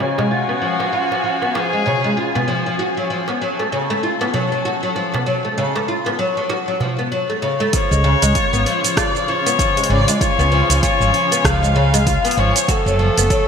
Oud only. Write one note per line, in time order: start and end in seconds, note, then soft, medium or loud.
0.00 0.16 C#3 medium
0.18 0.30 G#3 medium
0.31 0.48 F4 medium
0.49 0.61 B3 medium
0.62 0.78 F3 medium
0.80 0.92 F3 medium
0.93 1.10 F4 medium
1.11 1.23 F3 medium
1.24 1.40 F3 medium
1.42 1.54 B3 medium
1.55 1.72 F3 medium
1.73 1.85 G#3 medium
1.86 2.02 C#3 medium
2.04 2.16 G#3 medium
2.17 2.34 F4 medium
2.35 2.47 B3 medium
2.48 2.65 F3 medium
2.66 2.78 F3 medium
2.79 2.96 F#4 medium
2.97 3.09 F#3 medium
3.10 3.26 F3 medium
3.29 3.40 B3 medium
3.42 3.58 F#3 medium
3.59 3.71 A3 medium
3.72 3.88 C#3 medium
3.90 4.02 A3 loud
4.03 4.20 F4 medium
4.21 4.32 B3 medium
4.34 4.51 F#3 medium
4.52 4.64 F#3 medium
4.65 4.82 F#4 medium
4.83 4.95 F#3 medium
4.96 5.12 F3 medium
5.14 5.25 B3 medium
5.26 5.43 F#3 medium
5.45 5.57 A3 medium
5.58 5.74 C#3 loud
5.75 5.88 A3 medium
5.88 6.05 F4 medium
6.06 6.18 B3 medium
6.19 6.36 F#3 medium
6.37 6.49 F#3 medium
6.50 6.67 F#4 medium
6.68 6.80 F#3 medium
6.81 6.97 F3 medium
6.99 7.10 B3 medium
7.12 7.29 F#3 medium
7.30 7.42 A3 medium
7.42 7.59 C#3 medium
7.60 7.73 A3 loud
7.73 7.90 F3 medium
7.91 8.04 G#3 medium
8.04 8.20 C#3 medium
8.22 8.35 G#3 loud
8.35 8.52 F4 medium
8.53 8.65 B3 loud
8.66 8.83 F3 medium
8.84 8.96 F3 medium
8.97 9.14 F4 loud
9.15 9.27 F3 medium
9.28 9.44 F3 medium
9.46 9.58 B3 medium
9.59 9.76 F3 medium
9.77 9.89 G#3 medium
9.90 10.06 C#3 medium
10.08 10.20 G#3 loud
10.21 10.38 F4 medium
10.39 10.51 B3 loud
10.52 10.69 F3 loud
10.70 10.82 F3 medium
10.83 11.00 F4 loud
11.01 11.13 F3 medium
11.14 11.30 F3 medium
11.32 11.43 B3 medium
11.45 11.62 F3 medium
11.63 11.75 G#3 medium
11.76 11.92 C#3 loud
11.94 12.06 G#3 loud
12.07 12.24 F4 medium
12.24 12.36 B3 loud
12.37 12.55 F3 loud
12.56 12.68 F3 medium
12.68 12.85 F#4 medium
12.86 12.99 F#3 medium
12.99 13.15 F3 medium
13.17 13.29 B3 medium
13.30 13.47 F#3 medium